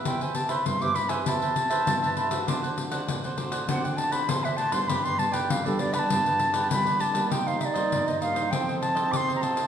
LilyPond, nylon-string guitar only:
\new Staff \with { instrumentName = "Nylon-string guitar" } { \time 4/4 \key g \mixolydian \tempo 4 = 99 << { <b e' g'>8 <b e' g'>8 r16 <b e' g'>16 <b e' g'>16 r16 <b e' g'>4 <b e' g'>8. <a c' fis'>16~ | <a c' fis'>8 <a c' fis'>8. <a c' fis'>16 <a c' fis'>8 <a c' fis'>4 <a c' fis'>8 r16 <g b d'>16~ | <g b d'>8 <g b d'>8. <g b d'>16 <g b d'>8 <g b d'>8. r16 <g b d'>8. <g bes ees'>16~ | \key c \minor <g bes ees'>8 r16 <g bes ees'>8. <g bes ees'>8 <c' ees' a'>8 r16 <c' ees' a'>8. <c' ees' a'>16 r16 | } \\ { c4 g,4 c4 g,4 | d4 a,4 d4 a,4 | g,4 d4 g,4 d4 | c4 g,4 f4 c4 | } >> }